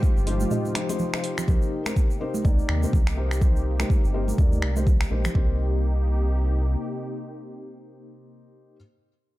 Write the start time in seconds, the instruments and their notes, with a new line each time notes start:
Already playing: analog synth pad C3 F3 F4 G4, felt piano D#4 F4 G4 C5
0.03 kick, shaker
0.17 analog synth bass G1, shaker
0.27 felt piano D#4 F4 G4 C5, open hi-hat, high conga
0.40 high conga, shaker
0.51 felt piano D#4 F4 G4 D#5, mid tom, shaker
0.65 high conga, shaker
0.75 felt piano D#4 F4 G4 C5, finger snap, open hi-hat
0.89 felt piano D#4 F4 G4 C5, open hi-hat, high conga, shaker
0.99 low conga, shaker
1.14 felt piano D#4 F4 G4 C5, finger snap, shaker
1.24 open hi-hat
1.38 finger snap, low conga, shaker
1.48 analog synth bass C2, analog synth pad C3 A#3 D#4 G4, felt piano D#4 G4 A#4 C5, kick, low conga, shaker
1.62 shaker
1.86 felt piano D#4 G4 A#4 C5, finger snap, high conga, shaker
1.96 kick, shaker
2.10 shaker
2.21 felt piano D#4 G4 A#4 C5
2.34 high conga, shaker
2.45 analog synth bass C2, felt piano D#4 G4 A#4 D5, kick, shaker
2.59 shaker
2.69 analog synth bass D#2, finger snap
2.83 felt piano D#4 G4 A#4 C5, high conga, shaker
2.93 analog synth bass C2, kick, low conga, shaker
3.07 finger snap, shaker
3.17 felt piano D#4 G4 A#4 C5
3.31 finger snap, shaker
3.42 felt piano D#4 G4 A#4 C5, kick, low conga, shaker
3.56 shaker
3.80 felt piano D#4 G4 A#4 C5, finger snap, high conga, shaker
3.90 kick, shaker
4.04 analog synth bass G1, shaker
4.14 felt piano D#4 G4 A#4 C5
4.28 high conga, shaker
4.38 analog synth bass D#2, felt piano D#4 G4 A#4 D5, kick, shaker
4.53 high conga, shaker
4.62 analog synth bass C2, finger snap
4.76 felt piano D#4 G4 A#4 C5, high conga, shaker
4.87 kick, low conga, shaker
5.01 finger snap, shaker
5.10 analog synth bass A#1, felt piano D#4 G4 A#4 C5, high conga
5.25 finger snap, low conga, shaker
5.35 analog synth bass C2, analog synth pad C3 A#3 D#4 G4, felt piano D#4 G4 A#4 C5, kick